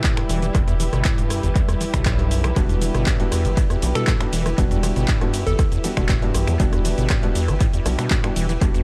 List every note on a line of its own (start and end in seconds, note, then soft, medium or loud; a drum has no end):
0.00 8.83 G3 medium
0.00 8.83 E4 medium
0.00 8.83 G4 medium
0.00 8.83 B4 medium
0.00 2.55 D5 medium
0.00 clap loud
0.04 0.19 A2 medium
0.04 kick loud
0.04 closed hi-hat medium
0.04 shaker soft
0.17 0.24 G2 medium
0.17 finger snap medium
0.17 cross-stick medium
0.17 closed hi-hat soft
0.29 0.50 E1 medium
0.29 0.40 E3 medium
0.29 open hi-hat loud
0.29 shaker medium
0.42 0.46 E3 medium
0.42 closed hi-hat medium
0.42 shaker soft
0.55 0.89 E1 loud
0.55 0.62 E2 medium
0.55 kick loud
0.55 cross-stick medium
0.55 closed hi-hat medium
0.55 shaker soft
0.68 0.74 E2 loud
0.68 closed hi-hat soft
0.68 shaker soft
0.80 0.84 E3 medium
0.80 open hi-hat loud
0.80 shaker medium
0.93 1.03 G1 loud
0.93 1.03 B2 medium
0.93 cross-stick medium
0.93 closed hi-hat medium
0.93 shaker soft
1.05 1.20 A2 medium
1.05 kick loud
1.05 clap loud
1.05 closed hi-hat medium
1.05 shaker soft
1.18 1.28 E1 medium
1.18 1.32 G2 medium
1.18 closed hi-hat soft
1.18 shaker soft
1.30 1.41 F#2 loud
1.30 cross-stick medium
1.30 open hi-hat loud
1.30 shaker medium
1.43 1.53 G1 medium
1.43 1.50 E2 medium
1.43 closed hi-hat soft
1.43 shaker soft
1.56 1.63 E2 medium
1.56 kick loud
1.56 closed hi-hat medium
1.56 shaker soft
1.69 1.75 E2 loud
1.69 cross-stick medium
1.69 closed hi-hat soft
1.69 shaker soft
1.81 1.85 E3 medium
1.81 open hi-hat loud
1.81 shaker medium
1.94 2.53 B1 medium
1.94 2.04 B2 medium
1.94 finger snap medium
1.94 kick medium
1.94 closed hi-hat soft
1.94 shaker soft
2.06 2.20 A2 medium
2.06 kick loud
2.06 cross-stick medium
2.06 clap loud
2.06 closed hi-hat medium
2.06 shaker soft
2.19 2.33 G2 medium
2.19 closed hi-hat soft
2.31 2.46 F#2 loud
2.31 open hi-hat loud
2.31 shaker medium
2.44 2.51 G3 medium
2.44 finger snap medium
2.44 cross-stick medium
2.44 closed hi-hat soft
2.44 shaker soft
2.56 2.91 E1 loud
2.56 2.63 E2 medium
2.56 3.17 G3 medium
2.56 3.17 B3 medium
2.56 3.17 D4 medium
2.56 3.17 F#4 medium
2.56 kick loud
2.56 cross-stick medium
2.56 closed hi-hat medium
2.56 ride medium
2.56 shaker soft
2.69 2.76 E2 loud
2.69 closed hi-hat soft
2.69 shaker soft
2.82 2.86 E3 medium
2.82 open hi-hat loud
2.82 ride medium
2.82 shaker medium
2.94 3.05 G1 loud
2.94 3.05 B2 medium
2.94 cross-stick medium
2.94 closed hi-hat medium
2.94 shaker soft
3.06 3.21 A2 medium
3.06 kick loud
3.06 clap loud
3.06 closed hi-hat medium
3.06 ride medium
3.06 shaker soft
3.20 3.30 E1 medium
3.20 3.27 G2 medium
3.20 3.34 G3 medium
3.20 3.34 B3 medium
3.20 3.34 D4 medium
3.20 3.34 F#4 medium
3.20 closed hi-hat soft
3.32 3.46 E2 loud
3.32 cross-stick medium
3.32 open hi-hat loud
3.32 ride medium
3.32 shaker medium
3.45 3.55 G1 medium
3.45 3.52 E3 medium
3.45 closed hi-hat medium
3.45 shaker soft
3.57 3.64 A2 medium
3.57 kick loud
3.57 closed hi-hat medium
3.57 ride medium
3.57 shaker soft
3.70 3.77 E2 loud
3.70 cross-stick medium
3.70 closed hi-hat soft
3.70 shaker soft
3.82 3.93 B1 medium
3.82 3.87 E3 medium
3.82 3.92 G3 medium
3.82 3.92 B3 medium
3.82 3.92 D4 medium
3.82 3.92 F#4 medium
3.82 open hi-hat loud
3.82 ride medium
3.82 shaker medium
3.95 4.05 B2 medium
3.95 4.10 G3 medium
3.95 4.10 B3 medium
3.95 4.10 D4 medium
3.95 4.10 F#4 medium
3.95 4.46 A4 medium
3.95 finger snap medium
3.95 closed hi-hat medium
3.95 shaker soft
4.07 4.22 A2 medium
4.07 kick loud
4.07 cross-stick medium
4.07 clap loud
4.07 closed hi-hat medium
4.07 ride medium
4.07 shaker soft
4.21 4.27 G2 medium
4.21 4.29 G3 medium
4.21 4.29 B3 medium
4.21 4.29 D4 medium
4.21 4.29 F#4 medium
4.21 finger snap medium
4.21 closed hi-hat soft
4.33 4.54 E1 medium
4.33 4.44 E3 medium
4.33 open hi-hat loud
4.33 ride medium
4.33 shaker medium
4.46 4.50 E3 medium
4.46 cross-stick medium
4.46 closed hi-hat medium
4.46 shaker soft
4.58 4.93 E1 loud
4.58 4.65 E2 medium
4.58 5.18 G3 medium
4.58 5.18 B3 medium
4.58 5.18 D4 medium
4.58 5.18 F#4 medium
4.58 kick loud
4.58 closed hi-hat medium
4.58 ride medium
4.58 shaker soft
4.71 4.78 E2 loud
4.71 closed hi-hat soft
4.71 shaker soft
4.83 4.88 E3 medium
4.83 cross-stick medium
4.83 open hi-hat loud
4.83 ride medium
4.83 shaker medium
4.96 5.06 G1 loud
4.96 5.06 B2 medium
4.96 closed hi-hat medium
4.96 shaker soft
5.08 kick loud
5.08 clap loud
5.08 closed hi-hat medium
5.08 ride medium
5.08 shaker soft
5.21 5.32 E1 medium
5.21 5.35 G2 medium
5.21 5.36 G3 medium
5.21 5.36 B3 medium
5.21 5.36 D4 medium
5.21 5.36 F#4 medium
5.21 cross-stick medium
5.21 closed hi-hat soft
5.34 5.44 F#2 loud
5.34 open hi-hat loud
5.34 ride medium
5.34 shaker medium
5.47 5.57 G1 medium
5.47 5.53 E2 medium
5.47 6.17 A4 loud
5.47 closed hi-hat medium
5.47 shaker soft
5.59 5.66 E2 medium
5.59 kick loud
5.59 cross-stick medium
5.59 closed hi-hat medium
5.59 ride medium
5.59 shaker soft
5.72 5.79 E2 loud
5.72 closed hi-hat soft
5.72 shaker soft
5.84 5.88 E3 medium
5.84 5.93 G3 medium
5.84 5.93 B3 medium
5.84 5.93 D4 medium
5.84 5.93 F#4 medium
5.84 open hi-hat loud
5.84 ride medium
5.84 shaker medium
5.97 6.31 E1 loud
5.97 6.07 B2 medium
5.97 6.11 G3 medium
5.97 6.11 B3 medium
5.97 6.11 D4 medium
5.97 6.11 F#4 medium
5.97 finger snap medium
5.97 kick medium
5.97 cross-stick medium
5.97 closed hi-hat medium
5.97 shaker soft
6.09 6.24 A2 medium
6.09 kick loud
6.09 clap loud
6.09 closed hi-hat medium
6.09 ride medium
6.09 shaker soft
6.22 6.36 G2 medium
6.22 6.31 G3 medium
6.22 6.31 B3 medium
6.22 6.31 D4 medium
6.22 6.31 F#4 medium
6.22 closed hi-hat soft
6.34 6.45 A1 medium
6.34 6.49 F#2 loud
6.34 cross-stick medium
6.34 open hi-hat loud
6.34 ride medium
6.34 shaker medium
6.47 6.58 E2 medium
6.47 6.54 G3 medium
6.47 finger snap medium
6.47 closed hi-hat medium
6.47 shaker soft
6.60 6.94 E1 loud
6.60 6.67 E2 medium
6.60 7.20 G3 medium
6.60 7.20 B3 medium
6.60 7.20 D4 medium
6.60 7.20 F#4 medium
6.60 kick loud
6.60 closed hi-hat medium
6.60 ride medium
6.60 shaker soft
6.73 6.79 E2 loud
6.73 cross-stick medium
6.73 closed hi-hat soft
6.73 shaker soft
6.85 6.89 E3 medium
6.85 open hi-hat loud
6.85 ride medium
6.85 shaker medium
6.98 7.08 G1 loud
6.98 7.08 B2 medium
6.98 closed hi-hat medium
6.98 shaker soft
7.10 7.25 A2 medium
7.10 kick loud
7.10 cross-stick medium
7.10 clap loud
7.10 closed hi-hat medium
7.10 ride medium
7.10 shaker soft
7.23 7.33 E1 medium
7.23 7.30 G2 medium
7.23 7.37 G3 medium
7.23 7.37 B3 medium
7.23 7.37 D4 medium
7.23 7.37 F#4 medium
7.23 closed hi-hat soft
7.35 7.50 E2 loud
7.35 open hi-hat loud
7.35 ride medium
7.35 shaker medium
7.48 7.59 G1 medium
7.48 7.55 E3 medium
7.48 cross-stick medium
7.48 closed hi-hat medium
7.48 shaker soft
7.60 7.68 A2 medium
7.60 kick loud
7.60 closed hi-hat medium
7.60 ride medium
7.60 shaker soft
7.73 7.80 E2 loud
7.73 closed hi-hat soft
7.73 shaker soft
7.86 7.97 B1 medium
7.86 7.90 E3 medium
7.86 7.95 G3 medium
7.86 7.95 B3 medium
7.86 7.95 D4 medium
7.86 7.95 F#4 medium
7.86 cross-stick medium
7.86 open hi-hat loud
7.86 ride medium
7.86 shaker medium
7.99 8.09 B2 medium
7.99 8.13 G3 medium
7.99 8.13 B3 medium
7.99 8.13 D4 medium
7.99 8.13 F#4 loud
7.99 finger snap medium
7.99 closed hi-hat medium
7.99 shaker soft
8.11 8.25 A2 medium
8.11 kick loud
8.11 clap loud
8.11 closed hi-hat medium
8.11 ride medium
8.11 shaker soft
8.24 8.31 G2 medium
8.24 8.33 G3 medium
8.24 8.33 B3 medium
8.24 8.33 D4 medium
8.24 8.33 F#4 medium
8.24 finger snap medium
8.24 cross-stick medium
8.24 closed hi-hat soft
8.36 8.57 E1 loud
8.36 8.47 E3 medium
8.36 open hi-hat loud
8.36 ride medium
8.36 shaker medium
8.49 8.53 E3 medium
8.49 closed hi-hat medium
8.49 shaker soft
8.61 8.83 E1 loud
8.61 8.69 E2 medium
8.61 8.83 G3 medium
8.61 8.83 B3 medium
8.61 8.83 D4 medium
8.61 8.83 F#4 medium
8.61 kick loud
8.61 cross-stick medium
8.61 closed hi-hat medium
8.61 ride medium
8.61 shaker soft
8.74 8.81 E2 loud
8.74 closed hi-hat soft
8.74 shaker soft